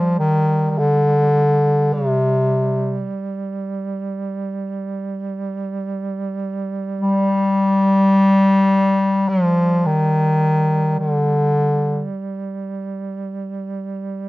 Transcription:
Already playing: F3 G3
0.19 D#3
0.70 D#3
0.79 D3
1.93 C3
7.01 G3
9.29 F3
9.86 D#3
10.99 D3

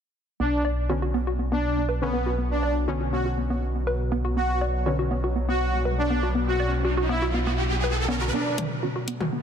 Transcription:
0.40 B1 B2 F#3 B3 D4
0.65 D5
0.89 D3 B3 C#4 F#4
1.02 F#4
1.14 B3
1.27 F#4
1.39 B3
1.52 B3 D4
1.89 B4
2.02 D3 B3 C#4
2.13 B3
2.26 F#4
2.38 B3
2.51 D4
2.63 D5
2.88 D3 B3 C#4 F#4
3.01 F#4
3.13 B3 F#4
3.25 F#4
3.37 B3
3.50 B3
3.87 B4
4.12 B3
4.25 F#4
4.37 B3 F#4, riser
4.61 D5
4.86 D3 B3 C#4 F#4
4.99 F#4
5.11 B3
5.24 F#4
5.36 B3
5.49 B3 F#4
5.85 B4
5.98 D4
6.10 B3
6.23 F#4
6.35 B3
6.48 F#4
6.60 D5
6.85 F#4
6.97 F#4
7.09 B3 E4
7.22 F#4
7.34 B3
7.47 B3
7.84 B4
8.08 D3 B3 C#4
8.21 F#4
8.33 B2 F#3 B3 D4, riser
8.58 D5, closed hi-hat, mid tom
8.83 D3 B3 C#4 F#4
8.96 F#4
9.08 B3, closed hi-hat
9.20 F#4, mid tom
9.32 B3

